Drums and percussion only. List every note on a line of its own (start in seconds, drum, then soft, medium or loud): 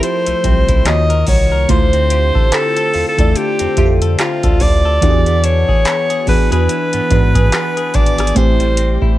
0.03 closed hi-hat medium
0.26 closed hi-hat medium
0.44 kick medium
0.44 closed hi-hat medium
0.68 kick loud
0.68 closed hi-hat soft
0.85 cross-stick medium
0.85 clap loud
0.85 closed hi-hat medium
1.10 closed hi-hat medium
1.27 kick medium
1.27 open hi-hat medium
1.69 kick loud
1.69 closed hi-hat medium
1.93 closed hi-hat soft
2.10 closed hi-hat medium
2.35 kick medium
2.52 clap loud
2.52 closed hi-hat medium
2.77 closed hi-hat soft
2.94 open hi-hat medium
3.18 kick loud
3.18 closed hi-hat medium
3.36 closed hi-hat medium
3.59 closed hi-hat medium
3.77 kick medium
3.77 closed hi-hat medium
4.02 closed hi-hat medium
4.19 cross-stick medium
4.19 clap loud
4.19 closed hi-hat medium
4.43 kick loud
4.43 closed hi-hat soft
4.60 kick loud
4.60 open hi-hat medium
5.02 kick loud
5.02 closed hi-hat medium
5.26 closed hi-hat soft
5.44 closed hi-hat medium
5.68 kick medium
5.85 clap loud
5.85 closed hi-hat medium
6.10 closed hi-hat soft
6.27 kick medium
6.27 open hi-hat medium
6.52 closed hi-hat medium
6.69 closed hi-hat medium
6.93 closed hi-hat medium
7.11 kick medium
7.11 closed hi-hat medium
7.35 kick loud
7.35 closed hi-hat medium
7.52 cross-stick loud
7.52 clap loud
7.52 closed hi-hat medium
7.77 closed hi-hat soft
7.94 kick loud
7.94 closed hi-hat soft
7.94 open hi-hat medium
8.06 closed hi-hat medium
8.18 cross-stick medium
8.18 closed hi-hat medium
8.27 closed hi-hat medium
8.36 kick loud
8.36 closed hi-hat medium
8.60 closed hi-hat soft
8.77 closed hi-hat medium
9.02 kick loud